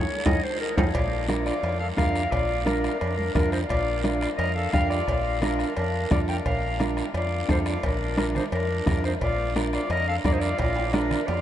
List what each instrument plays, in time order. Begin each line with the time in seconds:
Already playing: clarinet C#5
0.26 fingered electric bass F2, clean electric guitar D#4 F4 A4, clarinet D#5, bombo low, high conga, high timbale, long guiro
0.43 clarinet C5
0.60 accordion D#4, clarinet A#4
0.77 fingered electric bass F2, accordion D#4, clean electric guitar D#4 F4 A4, clarinet C5, bombo low, high conga, high timbale, long guiro
0.94 fingered electric bass A#1, accordion F4, clarinet D5, bombo low, bombo rim, cowbell, long guiro
1.28 clean electric guitar D4 F4 A#4, bombo rim, high conga, short guiro
1.46 accordion F4, clarinet D5, bombo rim, short guiro
1.63 fingered electric bass F2, bombo rim, cowbell, long guiro
1.80 accordion A4, clarinet F5
1.96 fingered electric bass F2, clean electric guitar D4 F4 A#4, accordion A#4, clarinet F5, bombo low, bombo rim, high conga, low timbale, short guiro
2.15 bombo rim, short guiro
2.31 fingered electric bass A#1, accordion F4, clarinet D5, bombo low, bombo rim, cowbell, long guiro
2.65 accordion D4, clean electric guitar D4 F4 A#4, clarinet A#4, bombo rim, high conga, short guiro
2.84 bombo rim, short guiro
2.99 fingered electric bass F2, accordion D4, clarinet A#4, bombo rim, cowbell, long guiro
3.16 accordion D4, clarinet A#4, high conga
3.34 fingered electric bass F2, accordion D4, clean electric guitar D4 F4 A#4, clarinet A#4, bombo low, bombo rim, high conga, low conga, low timbale, short guiro
3.52 accordion D#4, clarinet C5, bombo rim, short guiro
3.69 fingered electric bass A#1, accordion F4, clarinet D5, bombo low, bombo rim, cowbell, long guiro
4.04 clean electric guitar D4 F4 A#4, bombo rim, high conga, short guiro
4.20 accordion F4, clarinet D5, bombo rim, short guiro
4.37 fingered electric bass F2, accordion A#4, clarinet D#5, bombo rim, cowbell, long guiro
4.54 accordion A4, clarinet F5
4.71 fingered electric bass F2, clean electric guitar D4 F4 G4, accordion A#4, clarinet F5, bombo low, bombo rim, high conga, short guiro
4.89 accordion F4, clarinet D5, bombo rim, short guiro
5.08 fingered electric bass A#1, bombo low, bombo rim, cowbell, long guiro
5.41 accordion D4, clean electric guitar D4 F4 A#4, clarinet A#4, bombo rim, high conga, short guiro
5.59 bombo rim, short guiro
5.76 fingered electric bass F2, accordion D4, clarinet A#4, bombo rim, cowbell, long guiro
6.11 fingered electric bass F2, clean electric guitar D4 F4 A4, accordion F4, clarinet D5, bombo low, bombo rim, high conga, low conga, low timbale, short guiro
6.28 accordion A#4, clarinet G5, bombo rim, short guiro
6.45 fingered electric bass A#1, accordion A#4, clarinet F5, bombo low, bombo rim, cowbell, long guiro
6.80 clean electric guitar D4 F4 A#4, bombo rim, high conga, short guiro
6.97 bombo rim, short guiro
7.14 fingered electric bass F2, accordion F4, clarinet D5, bombo rim, cowbell, long guiro
7.49 fingered electric bass F2, clean electric guitar D4 F4 A4, accordion F4, clarinet C5, bombo low, bombo rim, high conga, low timbale, short guiro
7.66 accordion F4, clarinet D5, bombo rim, short guiro
7.83 fingered electric bass A#1, accordion D4, clarinet A#4, bombo low, bombo rim, cowbell, long guiro
8.17 clean electric guitar D4 F4 A#4, accordion D4, clarinet A#4, bombo rim, high conga, short guiro
8.35 accordion D#4, clarinet C5, bombo rim, low conga, short guiro
8.52 fingered electric bass F2, accordion D4, clarinet A#4, bombo rim, cowbell, long guiro
8.86 fingered electric bass F2, clean electric guitar D4 F4 A#4, accordion D4, clarinet A#4, bombo low, bombo rim, high conga, low conga, low timbale, short guiro
9.04 accordion D#4, clarinet C5, bombo rim, short guiro
9.21 fingered electric bass A#1, accordion F4, clarinet D5, bombo low, bombo rim, cowbell, long guiro
9.56 clean electric guitar D4 F4 A#4, bombo rim, high conga, short guiro
9.73 accordion F4, clarinet D5, bombo rim, short guiro
9.90 fingered electric bass F2, accordion A#4, clarinet D#5, bombo rim, cowbell, long guiro
10.08 accordion A4, clarinet F5
10.24 fingered electric bass F2, clean electric guitar D4 F4 A#4, accordion F4, clarinet D5, bombo low, bombo rim, high conga, low timbale, short guiro
10.33 accordion D#4, clarinet C5
10.39 accordion F4, clarinet D5, bombo rim, short guiro
10.59 fingered electric bass A#1, accordion F4, clarinet D5, bombo low, bombo rim, cowbell, high timbale, long guiro
10.75 high timbale
10.93 clean electric guitar D4 F4 A#4, accordion D4, clarinet A#4, bombo rim, high conga, low timbale, short guiro
11.11 bombo rim, low conga, short guiro
11.27 fingered electric bass F2, accordion F4, clarinet D5, bombo rim, cowbell, low timbale, long guiro